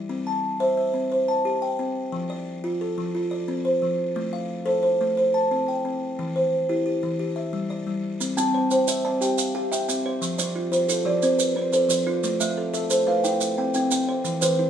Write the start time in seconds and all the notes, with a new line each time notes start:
0.09 C4
0.27 A5
0.60 C5 E5
0.77 E5
0.94 C4
1.12 C5
1.28 A5
1.45 G4
1.62 G5
1.79 C4
2.12 F3
2.30 D5
2.64 F4
2.81 A4
2.98 F3
3.15 F4
3.31 D5
3.48 C4
3.65 C5
3.82 F3
4.16 A3
4.33 F5
4.66 A4 C5
4.83 C5
5.01 A3
5.17 C5
5.34 A5
5.51 C4
5.68 G5
5.85 C4
6.19 E3
6.36 C5
6.69 E4 G4
6.86 G4
7.03 E3
7.19 G4
7.36 E5
7.53 G3
7.70 D5
7.87 G3
8.21 C4, maracas
8.37 C4 G5 A5, maracas
8.54 C5
8.71 C5 G5, maracas
8.88 C5 E5, maracas
9.05 C4 D5 A5
9.21 G4 G5, maracas
9.38 F5, maracas
9.55 G4 G5
9.72 E5 G5, maracas
9.89 C4 G5, maracas
10.06 C5
10.22 F3, maracas
10.38 F3 C5 D5, maracas
10.56 F4
10.72 F4 C5, maracas
10.88 F4 A4, maracas
11.05 F3 G4 D5
11.22 C4 C5, maracas
11.39 B4, maracas
11.56 C4 C5
11.73 A4 C5, maracas
11.89 F3 C5, maracas
12.07 F4
12.24 A3, maracas
12.40 A3 E5 F5, maracas
12.57 A4
12.74 A4 E5, maracas
12.90 A4 C5, maracas
13.07 A3 B4 F5
13.24 E4 G5, maracas
13.41 F5, maracas
13.58 C4 G5
13.74 C4 G5, maracas
13.91 C4 G5, maracas
14.09 C5
14.24 E3, maracas
14.41 E3 B4 C5, maracas
14.59 E4